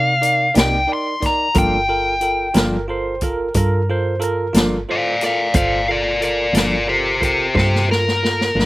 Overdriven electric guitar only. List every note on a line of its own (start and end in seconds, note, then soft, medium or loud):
0.00 0.54 F5 medium
0.60 0.90 G5 medium
0.93 1.24 C6 medium
1.26 1.57 A#5 medium
1.58 3.53 G5 medium
4.91 5.23 D5 medium
4.91 5.22 F5 medium
5.24 5.54 D5 medium
5.24 5.56 F5 medium
5.56 5.87 D5 medium
5.56 5.89 F5 medium
5.91 6.21 A#4 medium
5.91 6.23 D5 medium
6.24 6.54 A#4 medium
6.24 6.55 D5 medium
6.57 6.87 A#4 medium
6.57 6.89 D5 medium
6.89 7.20 G4 medium
6.89 7.22 C5 medium
7.23 7.54 G4 medium
7.23 7.55 C5 medium
7.57 7.88 G4 medium
7.57 7.89 C5 medium
7.91 8.66 A#4 medium